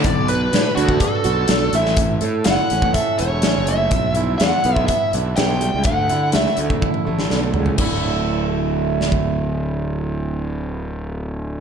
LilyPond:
<<
  \new Staff \with { instrumentName = "Lead electric guitar" } { \time 4/4 \key d \major \tempo 4 = 124 d''8 b'4 fis'8 a'4. e''8 | r4 fis''4 e''8 cis''4 e''8~ | e''8 r8 fis''4 e''8 r8 g''4 | fis''4 e''8 r2 r8 |
r1 | r1 | }
  \new Staff \with { instrumentName = "Steel-string acoustic guitar" } { \time 4/4 \key d \major b,8 b'8 fis'8 d'8 b'8 fis'8 d'8 a,8 | a,8 a'8 e'8 cis'8 a'8 e'8 cis'8 a8 | g,8 e'8 d'8 b8 e'8 d'8 b8 g8 | d,8 e'8 a8 d8 e'8 a8 d8 a,8 |
<d, a, d a e'>1~ | <d, a, d a e'>1 | }
  \new Staff \with { instrumentName = "Fingered electric bass" } { \clef bass \time 4/4 \key d \major b,,4 a,16 r16 d,8 r8 b,,8 b,,8 a,,8~ | a,,8 a,8 fis,,16 r16 a,,8 r8 e,,8 a,,16 fis,,8. | b,,4 e,16 r16 b,,8 r8 b,,8 b,,8. cis,16 | d,8 d8 cis,16 r16 d,8 r8 a,,8 b,,8 cis,8 |
d,,1~ | d,,1 | }
  \new DrumStaff \with { instrumentName = "Drums" } \drummode { \time 4/4 <hh bd>8 hh8 <hh sn>8 hh16 bd16 <hh bd>8 hh8 <hh sn>8 hh16 sn16 | <hh bd>8 hh8 <hh sn>8 hh16 bd16 <hh bd>8 hh8 <hh sn>8 hh8 | <hh bd>8 hh8 <hh sn>8 hh16 bd16 <hh bd>8 hh8 <hh sn>8 hh8 | <hh bd>8 hh8 <hh sn>16 sn16 hh16 bd16 <bd tommh>16 tommh8 sn16 sn8 tomfh16 tomfh16 |
<cymc bd>4 r4 r8 sn16 bd16 r4 | r4 r4 r4 r4 | }
>>